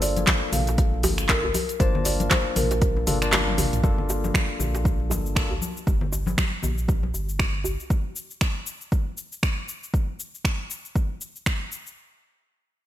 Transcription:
Already playing: sub bass G1, tine electric piano A#3 D4 F4 A4
0.02 marimba D5, open hi-hat, djembe slap, djembe tone, shaker
0.16 closed hi-hat, muted conga, high conga, shaker
0.27 finger snap, kick, clap, closed hi-hat, high conga, djembe tone, shaker
0.52 sub bass A#1, marimba F5, open hi-hat, mid tom, muted conga, djembe tone, low conga, shaker
0.67 closed hi-hat, djembe slap, shaker
0.78 kick, closed hi-hat, djembe tone, shaker
0.94 muted conga
1.03 sub bass G1, open hi-hat, djembe slap, high conga, djembe tone, djembe bass, shaker
1.18 finger snap, closed hi-hat, shaker
1.29 tine electric piano A#3 D4 F4 A4, marimba A#4, finger snap, kick, clap, closed hi-hat, muted conga, djembe tone, shaker
1.44 djembe bass
1.54 open hi-hat, high conga, djembe tone, shaker
1.69 closed hi-hat, shaker
1.79 sub bass G1, tine electric piano A#3 D4 F4 A5, marimba C5, kick, closed hi-hat, muted conga, djembe tone, high conga, shaker
1.95 low conga
2.04 marimba D5, open hi-hat, djembe slap, djembe tone, shaker
2.20 closed hi-hat, muted conga, high conga, shaker
2.30 marimba C5, finger snap, kick, clap, closed hi-hat, djembe tone, high conga, shaker
2.56 sub bass A#1, marimba A#4, open hi-hat, mid tom, muted conga, djembe tone, low conga, shaker
2.71 closed hi-hat, djembe slap, shaker
2.82 kick, closed hi-hat, djembe tone, shaker
2.96 muted conga, high conga
3.07 sub bass G1, tine electric piano A#3 D4 F4 A4, open hi-hat, mid tom, djembe tone, shaker
3.22 tine electric piano A#3 D4 F4 A5, finger snap, closed hi-hat, shaker
3.33 finger snap, clap, closed hi-hat, high tom, muted conga, djembe tone, shaker
3.48 high tom
3.58 open hi-hat, mid tom, djembe tone, djembe bass, shaker
3.73 sub bass A#1, closed hi-hat, mid tom, shaker
3.84 sub bass G1, tine electric piano A#3 D4 F4 A4, kick, muted conga, high conga, djembe tone, shaker
3.98 low conga
4.09 djembe slap, djembe tone, shaker
4.24 muted conga, high conga, shaker
4.34 finger snap, kick, high conga, djembe tone, shaker
4.59 sub bass A#1, muted conga, djembe tone, low conga, shaker
4.75 djembe slap, shaker
4.84 kick, djembe tone, shaker
5.00 muted conga
5.10 sub bass G1, djembe slap, djembe tone, high conga, djembe bass, shaker
5.26 shaker
5.35 tine electric piano A#3 D4 F4 A4, finger snap, kick, muted conga, djembe tone, shaker
5.51 djembe bass
5.62 high conga, djembe tone, shaker
5.77 shaker
5.87 sub bass G1, kick, muted conga, high conga, djembe tone, shaker
6.01 low conga
6.12 djembe slap, djembe tone, shaker
6.26 muted conga, high conga, shaker
6.38 finger snap, kick, high conga, djembe tone, shaker
6.62 sub bass A#1, muted conga, djembe tone, low conga, shaker
6.78 shaker
6.88 kick, djembe tone, shaker
7.03 muted conga, high conga
7.14 sub bass G1, djembe tone, shaker
7.29 shaker
7.39 finger snap, kick, muted conga, djembe tone, shaker
7.64 djembe tone, djembe bass, shaker
7.80 shaker
7.90 kick, shaker
8.16 shaker
8.30 shaker
8.41 finger snap, kick, shaker
8.67 shaker
8.81 shaker
8.92 kick, shaker
9.17 shaker
9.32 shaker
9.43 finger snap, kick, shaker
9.69 shaker
9.84 shaker
9.94 kick, shaker
10.20 shaker
10.34 shaker
10.45 finger snap, kick, shaker
10.71 shaker
10.85 shaker
10.96 kick, shaker
11.21 shaker
11.36 shaker
11.46 finger snap, kick, shaker
11.72 shaker
11.87 shaker

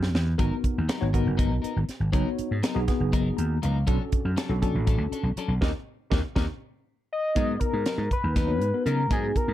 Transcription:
0.03 snare
0.14 slap bass E2, snare
0.38 slap bass G#1, clean electric guitar F#3 B3 D#4 A#4, tine electric piano B3 D#4 F#4 A#4, kick, closed hi-hat
0.64 muted slap bass stroke, kick, closed hi-hat
0.78 slap bass D#2
0.88 clean electric guitar F#3 B3 D#4 A#4, snare, closed hi-hat
1.01 slap bass G#1, tine electric piano B3 D#4 F#4 C#5
1.13 tine electric piano B3 D#4 F#4 A#4, clean electric guitar B3 D#4 A#4, kick, closed hi-hat
1.26 slap bass F#1
1.37 clean electric guitar F#3 B3 D#4 A#4, kick, closed hi-hat
1.51 slap bass B1
1.62 clean electric guitar B3 D#4 A#4, muted slap bass stroke, closed hi-hat
1.76 slap bass G#1
1.88 muted slap bass stroke, snare, closed hi-hat
2.00 slap bass G#1
2.12 slap bass F#1, clean electric guitar F#3 B3 D#4 A#4, tine electric piano B3 D#4 F#4 C#5, kick, closed hi-hat
2.39 muted slap bass stroke, closed hi-hat
2.51 slap bass G#2
2.63 clean electric guitar F#3 B3 D#4 A#4, snare, closed hi-hat
2.75 slap bass B1, tine electric piano B3 D#4 F#4 G#4
2.88 tine electric piano B3 D#4 F#4 G#4, kick, snare, closed hi-hat
3.00 slap bass F#1
3.13 clean electric guitar F#3 B3 D#4 A#4, kick, closed hi-hat
3.37 slap bass D#2, tine electric piano A#5, closed hi-hat
3.62 slap bass C#2, clean electric guitar F#3 B3 D#4 A#4, tine electric piano F5, closed hi-hat
3.87 slap bass B1, clean electric guitar F#3 C#4 D4 A4, tine electric piano C#4 D4 F#4 A4, kick, closed hi-hat
4.12 muted slap bass stroke, kick, closed hi-hat
4.25 slap bass F#2
4.37 clean electric guitar F#3 C#4 D4 A4, snare, closed hi-hat
4.49 slap bass B1, tine electric piano C#4 D4 F#4 A4
4.62 tine electric piano C#4 D4 F#4 A4, clean electric guitar C#4 D4 A4, kick, closed hi-hat
4.75 slap bass A1
4.87 clean electric guitar F#3 C#4 D4 A4, kick, closed hi-hat
4.98 slap bass D2
5.11 clean electric guitar C#4 D4 A4, muted slap bass stroke, closed hi-hat
5.23 slap bass B1
5.36 clean electric guitar F#3 C#4 D4 A4, muted slap bass stroke, closed hi-hat
5.48 slap bass B1
5.61 slap bass D#2, clean electric guitar A#3 C#4 D#4, tine electric piano D#4 G4 A#4, kick, snare
6.11 slap bass D#2, clean electric guitar A#3 C#4 D#4, tine electric piano D#4 G4 A#4, kick, snare
6.36 slap bass D#2, clean electric guitar A#3 C#4 D#4, tine electric piano D#4 G4 A#4, kick, snare
7.13 analog synth lead D#5
7.35 slap bass G#2, clean electric guitar F#3 B3 D#4 A#4, tine electric piano B3 D#4 F#4 A#4, kick, closed hi-hat
7.60 analog synth lead A#4, kick, closed hi-hat
7.73 slap bass G#2
7.86 clean electric guitar F#3 B3 D#4 A#4, snare, closed hi-hat
7.98 slap bass G#2
8.11 analog synth lead B4, kick, closed hi-hat
8.24 slap bass D#2
8.36 clean electric guitar F#3 B3 D#4 A#4, analog synth lead B4, kick, snare, closed hi-hat
8.47 tine electric piano B3 D#4 F#4 C#5
8.61 slap bass G#2, closed hi-hat
8.73 tine electric piano B3 D#4 F#4 A#4
8.86 slap bass C#3, clean electric guitar F#3 B3 D#4 A#4, analog synth lead A#4, closed hi-hat
9.10 slap bass G#2, clean electric guitar F#3 B3 D#4 A#4, tine electric piano B3 D#4 F#4 G#4, analog synth lead G#4, kick, closed hi-hat
9.36 analog synth lead A#4, kick, closed hi-hat
9.48 slap bass G#2

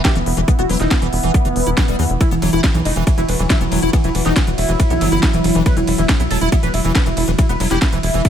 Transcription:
Already playing: ambient pad E3 E4
0.05 acid bass F#3, analog synth lead G4, kick, snare, closed hi-hat
0.16 analog synth bass E1, acid bass E3, analog synth lead B3, closed hi-hat
0.26 analog synth bass E1, analog synth lead B3, open hi-hat
0.37 analog synth bass E1, acid bass E3, closed hi-hat
0.48 acid bass E3, analog synth lead B3, kick, closed hi-hat
0.59 analog synth bass E1, acid bass B3, analog synth lead F#4, closed hi-hat
0.69 analog synth bass E1, acid bass F#3, analog synth lead B3, open hi-hat
0.80 analog synth bass E1, analog synth lead D#4, snare, closed hi-hat
0.91 analog synth lead B3, acid bass B3, kick, snare, closed hi-hat
1.02 analog synth bass E1, acid bass E3, analog synth lead B3, closed hi-hat
1.13 analog synth bass E1, analog synth lead B3, open hi-hat
1.23 analog synth bass E1, acid bass E3, closed hi-hat
1.34 acid bass F#3, kick, closed hi-hat
1.45 analog synth bass F#1, acid bass E3, closed hi-hat
1.56 analog synth bass E1, open hi-hat
1.67 analog synth bass E1, acid bass E4, closed hi-hat
1.77 acid bass E3, kick, snare, closed hi-hat
1.88 analog synth bass E1, acid bass G3, closed hi-hat
1.99 analog synth bass E2, acid bass E3, open hi-hat
2.10 analog synth bass E1, closed hi-hat
2.21 acid bass E3, ambient pad F#3, analog synth lead E4, kick, closed hi-hat, ride
2.31 analog synth bass E1, analog synth lead E3, acid bass B3, closed hi-hat
2.42 analog synth bass E1, analog synth lead E3, acid bass F#3, open hi-hat, ride
2.53 analog synth bass E1, analog synth lead E3, acid bass E4, closed hi-hat
2.64 acid bass B3, kick, snare, closed hi-hat, ride
2.75 analog synth bass B1, analog synth lead E3, acid bass E3, closed hi-hat
2.85 analog synth bass E1, analog synth lead D#4, open hi-hat, ride
2.96 analog synth bass E1, analog synth lead E3, acid bass E3, closed hi-hat
3.07 analog synth lead E3, acid bass F#3, kick, closed hi-hat, ride
3.18 analog synth bass E1, acid bass E3, analog synth lead E4, closed hi-hat
3.28 analog synth bass E1, analog synth lead E3, open hi-hat, ride
3.39 analog synth bass E1, analog synth lead E3, acid bass E3, closed hi-hat
3.50 acid bass E3, analog synth lead E4, kick, snare, closed hi-hat, ride
3.61 analog synth bass E1, analog synth lead E3, acid bass B3, closed hi-hat
3.72 analog synth bass E1, analog synth lead E3, acid bass F#3, open hi-hat, ride
3.82 analog synth bass E1, acid bass E4, closed hi-hat
3.93 analog synth lead E3, acid bass B3, kick, closed hi-hat, ride
4.04 analog synth bass E1, acid bass E3, analog synth lead E4, closed hi-hat
4.15 analog synth bass E1, analog synth lead E3, open hi-hat, ride
4.26 analog synth bass E1, acid bass E3, analog synth lead D#4, snare, closed hi-hat
4.36 analog synth lead E3, acid bass F#3, kick, snare, closed hi-hat, ride
4.47 analog synth bass E1, acid bass E3, analog synth lead E3, closed hi-hat
4.58 analog synth bass E1, analog synth lead E4, open hi-hat, ride
4.69 analog synth bass E1, acid bass E3, closed hi-hat
4.80 acid bass E3, kick, closed hi-hat, ride
4.90 analog synth bass B1, acid bass B3, closed hi-hat
5.01 analog synth bass G1, acid bass F#3, open hi-hat, ride
5.12 analog synth bass G1, acid bass E4, closed hi-hat
5.23 acid bass B3, kick, snare, closed hi-hat, ride
5.34 analog synth bass E1, acid bass E3, closed hi-hat
5.44 analog synth bass E1, open hi-hat, ride
5.55 analog synth bass E1, acid bass E3, closed hi-hat
5.66 acid bass F#3, analog synth lead B4, kick, closed hi-hat, ride
5.77 analog synth bass E1, acid bass E3, analog synth lead E4, closed hi-hat
5.87 analog synth bass E1, analog synth lead E4, open hi-hat, ride
5.98 analog synth bass E1, acid bass E3, analog synth lead E4, closed hi-hat
6.09 acid bass E3, kick, snare, closed hi-hat, ride
6.20 analog synth bass B1, acid bass B3, analog synth lead E4, closed hi-hat
6.31 analog synth bass E1, acid bass F#3, analog synth lead A4, open hi-hat, ride
6.41 analog synth bass E1, analog synth lead E4, acid bass E4, closed hi-hat
6.52 acid bass B3, analog synth lead E4, kick, closed hi-hat, ride
6.63 analog synth bass E1, acid bass E3, analog synth lead B4, closed hi-hat
6.74 analog synth bass E1, analog synth lead E4, open hi-hat, ride
6.85 analog synth bass E1, acid bass E3, analog synth lead E4, closed hi-hat
6.95 acid bass F#3, analog synth lead B4, kick, snare, closed hi-hat, ride
7.06 analog synth bass E1, acid bass E3, analog synth lead E4, closed hi-hat
7.17 analog synth bass E1, analog synth lead E4, open hi-hat, ride
7.28 analog synth bass E1, acid bass E3, closed hi-hat
7.39 acid bass E3, analog synth lead E4, kick, closed hi-hat, ride
7.49 analog synth bass E1, acid bass B3, analog synth lead B4, closed hi-hat
7.60 analog synth bass E1, acid bass F#3, analog synth lead E4, open hi-hat, ride
7.71 analog synth bass E1, acid bass E4, analog synth lead G4, snare, closed hi-hat
7.82 acid bass B3, analog synth lead E4, kick, snare, closed hi-hat, ride
7.92 analog synth bass E1, acid bass E3, analog synth lead E4, closed hi-hat
8.03 analog synth bass E1, analog synth lead E4, open hi-hat, ride
8.14 analog synth bass E1, acid bass E3, closed hi-hat
8.25 acid bass F#3, kick, closed hi-hat, ride

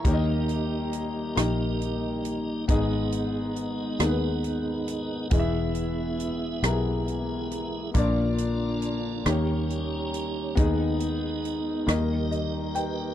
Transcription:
Already playing: french horn section A#3, tonewheel organ E4 C#5, upright piano E5 A#5
0.04 fingered electric bass D#2, french horn section D#3 G3 D#4, upright piano D#3 A#3 D#4 G4 C#5, tonewheel organ A#3 D#4 G4 D#5, kick, closed hi-hat
0.13 upright piano D#5
0.49 closed hi-hat
0.93 closed hi-hat
1.36 fingered electric bass A#1, upright piano A#3 D#4 G4 D#5, cross-stick, closed hi-hat
1.81 closed hi-hat
2.25 closed hi-hat
2.68 fingered electric bass G#1, upright piano G#2 B3 D#4 G#4 D#5, french horn section G#3 B3, tonewheel organ B3 D#4 G#4 D5, kick, closed hi-hat
2.75 tonewheel organ D#5
3.12 closed hi-hat
3.56 closed hi-hat
3.99 fingered electric bass D#2, upright piano B3 D#4 G#4 A#4, cross-stick, closed hi-hat
4.09 upright piano B4
4.44 closed hi-hat
4.88 closed hi-hat
5.30 fingered electric bass E1, upright piano E3 B3 E4 G#4 D#5, french horn section E3 E4, tonewheel organ B3 E4 G#4 E5, kick, closed hi-hat
5.39 upright piano E5
5.75 closed hi-hat
6.20 closed hi-hat
6.63 fingered electric bass B1, upright piano B3 E4 G4 A#4, cross-stick, closed hi-hat
6.71 upright piano G#4
7.07 tonewheel organ G#5, closed hi-hat
7.51 tonewheel organ E5, closed hi-hat
7.94 fingered electric bass A#1, upright piano A#2 A#3 D4 F4 D5, french horn section D3 F3 A#3 D4, tonewheel organ A#3 D4 F4 D5, kick, closed hi-hat
8.38 closed hi-hat
8.82 closed hi-hat
9.25 fingered electric bass D#2, french horn section D#3 G3 C#4, upright piano D#3 A#3 D#4 G4 C#5, tonewheel organ A#3 D#4 G4 C#5, cross-stick, closed hi-hat
9.70 closed hi-hat
10.14 closed hi-hat
10.55 fingered electric bass D#2, upright piano D#3 B3 D#4 G#4 D#5, french horn section D#3 G#3 B3 D#4, tonewheel organ B3 D#4 G#4 D#5, kick, closed hi-hat
11.00 closed hi-hat
11.45 closed hi-hat
11.87 fingered electric bass D#2, upright piano D#3 A#3 D#4 G4 D#5, french horn section G3, tonewheel organ D#4 G4 A#4 D#5, cross-stick, closed hi-hat
12.31 upright piano D#5, closed hi-hat
12.75 tonewheel organ D#4 A#4 B4, upright piano G5, closed hi-hat

